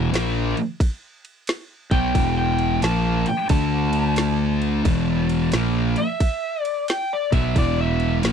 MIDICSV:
0, 0, Header, 1, 5, 480
1, 0, Start_track
1, 0, Key_signature, 1, "minor"
1, 0, Tempo, 676437
1, 1528, Time_signature, 4, 2, 24, 8
1, 5907, End_track
2, 0, Start_track
2, 0, Title_t, "Electric slide guitar"
2, 0, Program_c, 0, 29
2, 0, Note_on_c, 0, 76, 84
2, 224, Note_off_c, 0, 76, 0
2, 1360, Note_on_c, 0, 79, 91
2, 1674, Note_off_c, 0, 79, 0
2, 1688, Note_on_c, 0, 79, 83
2, 1998, Note_off_c, 0, 79, 0
2, 2009, Note_on_c, 0, 81, 81
2, 2318, Note_off_c, 0, 81, 0
2, 2333, Note_on_c, 0, 79, 77
2, 2483, Note_off_c, 0, 79, 0
2, 2486, Note_on_c, 0, 81, 96
2, 3898, Note_off_c, 0, 81, 0
2, 4242, Note_on_c, 0, 76, 107
2, 4697, Note_off_c, 0, 76, 0
2, 4697, Note_on_c, 0, 74, 107
2, 4866, Note_off_c, 0, 74, 0
2, 4894, Note_on_c, 0, 79, 79
2, 5046, Note_off_c, 0, 79, 0
2, 5060, Note_on_c, 0, 74, 77
2, 5204, Note_off_c, 0, 74, 0
2, 5207, Note_on_c, 0, 76, 86
2, 5363, Note_off_c, 0, 76, 0
2, 5378, Note_on_c, 0, 74, 84
2, 5529, Note_off_c, 0, 74, 0
2, 5539, Note_on_c, 0, 76, 85
2, 5791, Note_off_c, 0, 76, 0
2, 5907, End_track
3, 0, Start_track
3, 0, Title_t, "Distorted electric guitar"
3, 0, Program_c, 1, 30
3, 0, Note_on_c, 1, 40, 92
3, 0, Note_on_c, 1, 47, 97
3, 0, Note_on_c, 1, 52, 95
3, 79, Note_off_c, 1, 40, 0
3, 80, Note_off_c, 1, 47, 0
3, 81, Note_off_c, 1, 52, 0
3, 91, Note_on_c, 1, 46, 92
3, 94, Note_on_c, 1, 53, 89
3, 95, Note_on_c, 1, 58, 100
3, 393, Note_off_c, 1, 46, 0
3, 394, Note_off_c, 1, 53, 0
3, 395, Note_off_c, 1, 58, 0
3, 1362, Note_on_c, 1, 47, 85
3, 1364, Note_on_c, 1, 54, 92
3, 1368, Note_on_c, 1, 59, 91
3, 1519, Note_off_c, 1, 47, 0
3, 1525, Note_off_c, 1, 54, 0
3, 1527, Note_off_c, 1, 59, 0
3, 1527, Note_on_c, 1, 47, 105
3, 1528, Note_on_c, 1, 40, 95
3, 1531, Note_on_c, 1, 52, 106
3, 2002, Note_off_c, 1, 40, 0
3, 2002, Note_off_c, 1, 47, 0
3, 2004, Note_off_c, 1, 52, 0
3, 2007, Note_on_c, 1, 46, 89
3, 2009, Note_on_c, 1, 53, 93
3, 2014, Note_on_c, 1, 58, 94
3, 2310, Note_off_c, 1, 46, 0
3, 2311, Note_off_c, 1, 53, 0
3, 2314, Note_off_c, 1, 58, 0
3, 2482, Note_on_c, 1, 50, 86
3, 2487, Note_on_c, 1, 57, 87
3, 2487, Note_on_c, 1, 62, 88
3, 3439, Note_on_c, 1, 40, 87
3, 3440, Note_off_c, 1, 50, 0
3, 3440, Note_off_c, 1, 57, 0
3, 3442, Note_off_c, 1, 62, 0
3, 3443, Note_on_c, 1, 47, 98
3, 3443, Note_on_c, 1, 52, 101
3, 3918, Note_off_c, 1, 40, 0
3, 3920, Note_off_c, 1, 47, 0
3, 3920, Note_off_c, 1, 52, 0
3, 3924, Note_on_c, 1, 46, 80
3, 3927, Note_on_c, 1, 53, 90
3, 3928, Note_on_c, 1, 58, 88
3, 4229, Note_off_c, 1, 46, 0
3, 4230, Note_off_c, 1, 53, 0
3, 4231, Note_off_c, 1, 58, 0
3, 5194, Note_on_c, 1, 47, 84
3, 5197, Note_on_c, 1, 54, 94
3, 5199, Note_on_c, 1, 59, 102
3, 5360, Note_off_c, 1, 47, 0
3, 5361, Note_off_c, 1, 54, 0
3, 5362, Note_off_c, 1, 59, 0
3, 5364, Note_on_c, 1, 40, 91
3, 5369, Note_on_c, 1, 47, 104
3, 5370, Note_on_c, 1, 52, 98
3, 5837, Note_off_c, 1, 47, 0
3, 5840, Note_on_c, 1, 46, 84
3, 5842, Note_off_c, 1, 40, 0
3, 5842, Note_off_c, 1, 52, 0
3, 5845, Note_on_c, 1, 53, 96
3, 5847, Note_on_c, 1, 58, 102
3, 5907, Note_off_c, 1, 46, 0
3, 5907, Note_off_c, 1, 53, 0
3, 5907, Note_off_c, 1, 58, 0
3, 5907, End_track
4, 0, Start_track
4, 0, Title_t, "Fingered electric bass"
4, 0, Program_c, 2, 33
4, 84, Note_on_c, 2, 34, 85
4, 377, Note_off_c, 2, 34, 0
4, 1360, Note_on_c, 2, 35, 98
4, 1516, Note_off_c, 2, 35, 0
4, 1529, Note_on_c, 2, 28, 86
4, 1980, Note_off_c, 2, 28, 0
4, 2007, Note_on_c, 2, 34, 88
4, 2298, Note_off_c, 2, 34, 0
4, 2484, Note_on_c, 2, 38, 90
4, 3417, Note_off_c, 2, 38, 0
4, 3443, Note_on_c, 2, 28, 90
4, 3897, Note_off_c, 2, 28, 0
4, 3926, Note_on_c, 2, 34, 93
4, 4217, Note_off_c, 2, 34, 0
4, 5199, Note_on_c, 2, 35, 92
4, 5356, Note_off_c, 2, 35, 0
4, 5367, Note_on_c, 2, 28, 93
4, 5820, Note_off_c, 2, 28, 0
4, 5847, Note_on_c, 2, 34, 88
4, 5907, Note_off_c, 2, 34, 0
4, 5907, End_track
5, 0, Start_track
5, 0, Title_t, "Drums"
5, 97, Note_on_c, 9, 51, 83
5, 109, Note_on_c, 9, 38, 99
5, 168, Note_off_c, 9, 51, 0
5, 180, Note_off_c, 9, 38, 0
5, 406, Note_on_c, 9, 51, 60
5, 477, Note_off_c, 9, 51, 0
5, 569, Note_on_c, 9, 36, 103
5, 573, Note_on_c, 9, 51, 85
5, 640, Note_off_c, 9, 36, 0
5, 644, Note_off_c, 9, 51, 0
5, 885, Note_on_c, 9, 51, 61
5, 956, Note_off_c, 9, 51, 0
5, 1045, Note_on_c, 9, 51, 76
5, 1057, Note_on_c, 9, 38, 102
5, 1116, Note_off_c, 9, 51, 0
5, 1128, Note_off_c, 9, 38, 0
5, 1357, Note_on_c, 9, 36, 98
5, 1358, Note_on_c, 9, 51, 60
5, 1428, Note_off_c, 9, 36, 0
5, 1429, Note_off_c, 9, 51, 0
5, 1525, Note_on_c, 9, 36, 91
5, 1526, Note_on_c, 9, 51, 81
5, 1596, Note_off_c, 9, 36, 0
5, 1597, Note_off_c, 9, 51, 0
5, 1835, Note_on_c, 9, 51, 62
5, 1906, Note_off_c, 9, 51, 0
5, 2003, Note_on_c, 9, 51, 85
5, 2015, Note_on_c, 9, 38, 99
5, 2074, Note_off_c, 9, 51, 0
5, 2086, Note_off_c, 9, 38, 0
5, 2312, Note_on_c, 9, 51, 66
5, 2383, Note_off_c, 9, 51, 0
5, 2478, Note_on_c, 9, 51, 94
5, 2483, Note_on_c, 9, 36, 97
5, 2549, Note_off_c, 9, 51, 0
5, 2554, Note_off_c, 9, 36, 0
5, 2787, Note_on_c, 9, 51, 68
5, 2858, Note_off_c, 9, 51, 0
5, 2954, Note_on_c, 9, 51, 88
5, 2966, Note_on_c, 9, 38, 101
5, 3025, Note_off_c, 9, 51, 0
5, 3037, Note_off_c, 9, 38, 0
5, 3276, Note_on_c, 9, 51, 63
5, 3347, Note_off_c, 9, 51, 0
5, 3443, Note_on_c, 9, 51, 84
5, 3444, Note_on_c, 9, 36, 99
5, 3514, Note_off_c, 9, 51, 0
5, 3515, Note_off_c, 9, 36, 0
5, 3757, Note_on_c, 9, 51, 68
5, 3828, Note_off_c, 9, 51, 0
5, 3915, Note_on_c, 9, 51, 85
5, 3927, Note_on_c, 9, 38, 103
5, 3986, Note_off_c, 9, 51, 0
5, 3998, Note_off_c, 9, 38, 0
5, 4229, Note_on_c, 9, 51, 65
5, 4300, Note_off_c, 9, 51, 0
5, 4402, Note_on_c, 9, 36, 94
5, 4402, Note_on_c, 9, 51, 91
5, 4473, Note_off_c, 9, 36, 0
5, 4473, Note_off_c, 9, 51, 0
5, 4718, Note_on_c, 9, 51, 64
5, 4789, Note_off_c, 9, 51, 0
5, 4883, Note_on_c, 9, 51, 78
5, 4895, Note_on_c, 9, 38, 98
5, 4954, Note_off_c, 9, 51, 0
5, 4966, Note_off_c, 9, 38, 0
5, 5197, Note_on_c, 9, 36, 100
5, 5199, Note_on_c, 9, 51, 64
5, 5268, Note_off_c, 9, 36, 0
5, 5269, Note_off_c, 9, 51, 0
5, 5363, Note_on_c, 9, 51, 81
5, 5364, Note_on_c, 9, 36, 93
5, 5434, Note_off_c, 9, 36, 0
5, 5434, Note_off_c, 9, 51, 0
5, 5675, Note_on_c, 9, 51, 59
5, 5746, Note_off_c, 9, 51, 0
5, 5841, Note_on_c, 9, 51, 80
5, 5853, Note_on_c, 9, 38, 102
5, 5907, Note_off_c, 9, 38, 0
5, 5907, Note_off_c, 9, 51, 0
5, 5907, End_track
0, 0, End_of_file